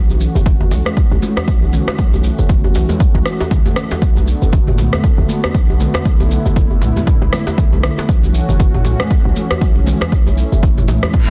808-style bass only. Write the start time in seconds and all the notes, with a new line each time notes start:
Already playing: B1
0.35 F#1
0.71 B1
1.11 B1
1.48 B1
1.99 B1
2.39 F#1
2.75 B1
3.15 B1
3.51 B1
4.02 B1
4.42 F#1
4.78 B1
5.18 B1
5.54 B1
6.05 B1
6.46 F#1
6.82 B1
7.22 B1
7.58 B1
8.09 B1
8.49 F#1
8.85 B1
9.25 B1
9.61 B1
10.12 B1
10.52 F#1
10.88 B1